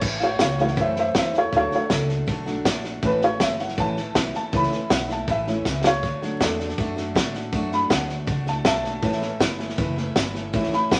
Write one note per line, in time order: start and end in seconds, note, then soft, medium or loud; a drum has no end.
0.01 0.39 A1 medium
0.01 0.21 A2 medium
0.01 0.21 E3 medium
0.01 0.22 A3 medium
0.01 0.20 C#4 loud
0.01 0.19 E4 loud
0.01 kick loud
0.01 snare soft
0.01 crash loud
0.20 0.38 A3 soft
0.20 0.39 C#4 medium
0.20 0.40 E4 medium
0.20 0.40 C#5 medium
0.20 0.22 F5 medium
0.20 snare soft
0.24 0.41 F#5 medium
0.39 0.77 C#2 loud
0.39 0.59 E3 medium
0.39 0.59 A3 medium
0.39 0.57 C#4 medium
0.39 0.56 E4 medium
0.39 0.59 C#5 medium
0.39 0.60 F#5 medium
0.39 kick medium
0.39 snare loud
0.39 hi-hat pedal medium
0.57 1.13 E3 medium
0.57 1.13 A3 medium
0.57 0.76 A3 soft
0.57 0.76 C#4 medium
0.57 1.14 C#4 medium
0.57 0.77 E4 medium
0.57 snare soft
0.61 0.78 C#5 medium
0.61 0.79 F#5 medium
0.67 snare soft
0.76 1.14 F#2 medium
0.76 0.96 A2 medium
0.76 0.96 E3 medium
0.76 0.97 A3 medium
0.76 0.95 C#4 medium
0.76 0.94 E4 medium
0.76 kick loud
0.76 snare soft
0.80 0.97 C5 medium
0.80 0.98 E5 medium
0.95 1.14 A3 soft
0.95 1.14 C#4 medium
0.95 1.15 E4 medium
0.95 1.16 C5 medium
0.95 snare soft
1.00 1.17 E5 medium
1.14 1.52 E2 loud
1.14 1.34 E3 medium
1.14 1.34 A3 medium
1.14 1.33 C#4 medium
1.14 1.32 E4 medium
1.14 1.34 C5 medium
1.14 kick medium
1.14 snare loud
1.14 hi-hat pedal medium
1.18 1.35 E5 medium
1.33 1.51 A3 soft
1.33 1.53 C#4 medium
1.33 1.53 E4 medium
1.33 snare soft
1.38 1.54 A4 medium
1.38 1.55 C#5 medium
1.52 1.71 D2 medium
1.52 1.72 D3 medium
1.52 1.79 F#3 medium
1.52 1.72 A3 medium
1.52 1.79 A3 medium
1.52 1.71 D4 medium
1.52 1.79 D4 medium
1.52 1.70 F#4 medium
1.52 1.72 A4 medium
1.52 kick loud
1.52 snare soft
1.57 1.73 C#5 medium
1.71 1.90 A3 medium
1.71 1.90 D4 medium
1.71 1.90 F#4 medium
1.71 muted upright bass stroke soft
1.71 snare soft
1.75 1.91 A4 medium
1.75 1.92 C#5 medium
1.89 2.27 C#2 loud
1.89 2.09 D3 medium
1.89 2.10 A3 medium
1.89 2.09 D4 medium
1.89 2.07 F#4 medium
1.89 2.65 A4 medium
1.89 kick medium
1.89 snare loud
1.89 hi-hat pedal medium
2.08 2.26 A3 soft
2.08 2.27 D4 soft
2.08 2.27 F#4 medium
2.08 snare soft
2.27 2.64 B1 medium
2.27 2.46 D3 medium
2.27 2.47 A3 medium
2.27 2.46 D4 loud
2.27 2.45 F#4 medium
2.27 kick loud
2.27 snare soft
2.46 2.64 F#3 medium
2.46 2.64 A3 medium
2.46 2.65 A3 soft
2.46 2.64 D4 medium
2.46 2.66 D4 medium
2.46 2.65 F#4 medium
2.46 snare soft
2.65 3.02 A#1 loud
2.65 2.84 D3 medium
2.65 2.85 A3 medium
2.65 2.84 D4 medium
2.65 2.82 F#4 medium
2.65 kick medium
2.65 snare loud
2.65 hi-hat pedal medium
2.83 3.02 A3 medium
2.83 3.03 D4 medium
2.83 3.03 F#4 medium
2.83 snare soft
3.02 3.40 A1 medium
3.02 3.22 A2 medium
3.02 3.22 E3 medium
3.02 3.76 E3 medium
3.02 3.22 A3 medium
3.02 3.76 A3 medium
3.02 3.22 C#4 medium
3.02 3.77 C#4 medium
3.02 3.21 E4 medium
3.02 3.23 B4 loud
3.02 kick loud
3.02 snare soft
3.22 3.40 A3 soft
3.22 3.41 C#4 medium
3.22 3.41 E4 medium
3.22 3.41 C#5 medium
3.22 snare soft
3.40 3.77 G1 loud
3.40 3.59 E3 medium
3.40 3.60 A3 medium
3.40 3.60 C#4 medium
3.40 3.59 E4 medium
3.40 3.60 E5 medium
3.40 kick medium
3.40 snare loud
3.40 hi-hat pedal medium
3.59 3.78 A3 soft
3.59 3.78 C#4 soft
3.59 3.78 E4 medium
3.59 3.78 F#5 medium
3.59 snare soft
3.69 snare soft
3.78 4.15 A1 medium
3.78 3.97 A2 medium
3.78 3.95 E3 soft
3.78 3.97 E3 medium
3.78 3.95 A3 soft
3.78 3.97 A3 medium
3.78 3.95 C#4 medium
3.78 3.97 C#4 medium
3.78 3.95 E4 medium
3.78 4.16 A5 loud
3.78 kick loud
3.78 snare soft
3.97 4.15 A3 soft
3.97 4.15 C#4 medium
3.97 4.16 E4 medium
3.97 snare soft
4.15 4.33 B1 loud
4.15 4.34 E3 medium
4.15 4.35 A3 medium
4.15 4.34 C#4 medium
4.15 4.32 E4 medium
4.15 kick medium
4.15 snare loud
4.15 hi-hat pedal medium
4.34 4.52 A3 soft
4.34 4.52 C#4 medium
4.34 4.53 E4 soft
4.34 4.54 A5 loud
4.34 snare soft
4.52 4.70 C#2 medium
4.52 4.72 A2 medium
4.52 4.72 E3 medium
4.52 4.79 E3 medium
4.52 4.71 A3 medium
4.52 4.79 A3 medium
4.52 4.70 C#4 medium
4.52 4.79 C#4 medium
4.52 4.68 E4 medium
4.52 kick loud
4.52 snare soft
4.56 4.91 B5 loud
4.63 snare soft
4.69 4.90 A3 soft
4.69 4.90 C#4 medium
4.69 4.90 E4 medium
4.69 snare soft
4.90 5.27 B1 loud
4.90 5.09 E3 medium
4.90 5.09 A3 medium
4.90 5.09 C#4 medium
4.90 5.06 E4 medium
4.90 5.10 F#5 medium
4.90 kick medium
4.90 snare loud
4.90 hi-hat pedal medium
5.08 5.27 A3 soft
5.08 5.28 C#4 soft
5.08 5.27 E4 medium
5.08 snare soft
5.12 5.29 A5 medium
5.28 5.65 A1 medium
5.28 5.47 A2 medium
5.28 5.47 E3 medium
5.28 5.47 A3 medium
5.28 5.47 C#4 medium
5.28 5.46 E4 medium
5.28 5.84 E5 medium
5.28 kick loud
5.28 snare soft
5.47 5.64 E3 medium
5.47 5.65 A3 soft
5.47 5.65 C#4 medium
5.47 5.66 C#4 soft
5.47 5.66 E4 medium
5.47 snare soft
5.65 6.02 C#2 medium
5.65 5.84 E3 medium
5.65 5.85 A3 medium
5.65 5.85 C#4 medium
5.65 5.84 E4 medium
5.65 kick medium
5.65 snare medium
5.65 hi-hat pedal medium
5.84 6.03 A3 soft
5.84 6.04 C#4 soft
5.84 6.03 E4 medium
5.84 6.40 C#5 medium
5.84 snare loud
6.03 6.40 D2 medium
6.03 6.22 D3 medium
6.03 6.23 A3 medium
6.03 6.22 D4 medium
6.03 6.21 F#4 medium
6.03 kick loud
6.03 snare soft
6.22 6.75 F#3 medium
6.22 6.76 A3 medium
6.22 6.39 A3 soft
6.22 6.76 D4 medium
6.22 6.41 D4 medium
6.22 6.41 F#4 medium
6.22 snare soft
6.40 6.77 E2 loud
6.40 6.59 D3 medium
6.40 6.59 A3 medium
6.40 6.60 D4 medium
6.40 6.58 F#4 medium
6.40 7.50 A4 medium
6.40 7.51 D5 medium
6.40 kick medium
6.40 snare loud
6.40 hi-hat pedal medium
6.59 6.78 A3 soft
6.59 6.79 D4 soft
6.59 6.78 F#4 medium
6.59 snare soft
6.69 snare soft
6.78 7.15 F#2 medium
6.78 6.97 D3 medium
6.78 6.95 F#3 soft
6.78 6.97 A3 medium
6.78 6.96 A3 soft
6.78 6.96 D4 medium
6.78 6.95 F#4 medium
6.78 kick loud
6.78 snare soft
6.96 7.15 A3 medium
6.96 7.15 D4 medium
6.96 7.15 F#4 medium
6.96 snare soft
7.15 7.52 A2 loud
7.15 7.34 D3 medium
7.15 7.35 A3 medium
7.15 7.35 D4 medium
7.15 7.33 F#4 medium
7.15 kick medium
7.15 snare loud
7.15 hi-hat pedal medium
7.34 7.53 A3 soft
7.34 7.54 D4 medium
7.34 7.53 F#4 medium
7.34 snare soft
7.52 7.89 F#2 medium
7.52 7.72 D3 medium
7.52 8.06 F#3 medium
7.52 8.06 A3 medium
7.52 7.72 A3 medium
7.52 8.07 D4 medium
7.52 7.72 D4 medium
7.52 7.71 F#4 loud
7.52 kick loud
7.52 snare soft
7.72 7.89 A3 soft
7.72 7.90 D4 medium
7.72 7.91 F#4 medium
7.72 7.91 B5 loud
7.72 snare soft
7.90 8.27 D2 loud
7.90 8.09 D3 medium
7.90 8.10 A3 medium
7.90 8.09 D4 medium
7.90 8.07 F#4 medium
7.90 8.46 F#5 loud
7.90 kick medium
7.90 snare loud
7.90 hi-hat pedal medium
8.09 8.26 A3 soft
8.09 8.27 D4 medium
8.09 8.27 F#4 medium
8.09 snare soft
8.26 8.64 C#2 medium
8.26 8.46 D3 medium
8.26 8.47 A3 medium
8.26 8.45 D4 medium
8.26 8.44 F#4 medium
8.26 kick loud
8.26 snare soft
8.45 8.64 A3 soft
8.45 8.65 D4 soft
8.45 8.65 F#4 medium
8.45 8.66 A5 medium
8.45 snare soft
8.65 9.02 B1 loud
8.65 8.84 D3 medium
8.65 8.84 A3 medium
8.65 8.84 D4 medium
8.65 8.82 F#4 medium
8.65 9.37 E5 loud
8.65 9.39 A5 loud
8.65 kick medium
8.65 snare loud
8.65 hi-hat pedal medium
8.84 9.02 A3 soft
8.84 9.03 D4 medium
8.84 9.03 F#4 medium
8.84 snare soft
9.02 9.40 A1 medium
9.02 9.22 A2 medium
9.02 9.28 E3 medium
9.02 9.22 E3 medium
9.02 9.28 A3 medium
9.02 9.22 A3 medium
9.02 9.28 C#4 medium
9.02 9.21 C#4 medium
9.02 9.20 E4 medium
9.02 kick loud
9.02 snare soft
9.12 snare soft
9.21 9.40 A3 medium
9.21 9.41 C#4 medium
9.21 9.40 E4 medium
9.21 snare soft
9.40 9.77 G1 loud
9.40 9.59 E3 medium
9.40 9.60 A3 medium
9.40 9.58 C#4 medium
9.40 9.56 E4 medium
9.40 kick medium
9.40 snare loud
9.40 hi-hat pedal medium
9.58 9.77 A3 medium
9.58 9.78 C#4 medium
9.58 9.78 E4 medium
9.58 snare soft
9.69 snare soft
9.78 10.15 F#1 medium
9.78 9.97 A2 medium
9.78 9.97 E3 loud
9.78 9.97 A3 loud
9.78 9.96 C#4 loud
9.78 9.94 E4 loud
9.78 kick loud
9.78 snare soft
9.96 10.15 A3 medium
9.96 10.16 C#4 medium
9.96 10.15 E4 medium
9.96 snare soft
10.15 10.53 G1 loud
10.15 10.34 E3 medium
10.15 10.35 A3 medium
10.15 10.33 C#4 medium
10.15 10.32 E4 medium
10.15 kick medium
10.15 snare loud
10.15 hi-hat pedal medium
10.33 10.53 A3 soft
10.33 10.53 C#4 medium
10.33 10.53 E4 medium
10.33 snare soft
10.53 10.71 A1 loud
10.53 10.72 A2 medium
10.53 10.72 E3 loud
10.53 11.00 E3 medium
10.53 10.73 A3 medium
10.53 11.00 A3 medium
10.53 10.71 C#4 loud
10.53 11.00 C#4 medium
10.53 10.70 E4 loud
10.53 kick loud
10.53 snare soft
10.63 snare soft
10.71 10.90 A3 soft
10.71 10.91 C#4 soft
10.71 10.90 E4 medium
10.71 10.92 B5 loud
10.71 muted upright bass stroke soft
10.71 snare soft
10.89 11.00 B1 loud
10.89 11.00 E3 medium
10.89 11.00 A3 medium
10.89 11.00 C#4 medium
10.89 11.00 E4 medium
10.89 kick medium
10.89 snare loud
10.89 hi-hat pedal medium
10.94 11.00 F#5 medium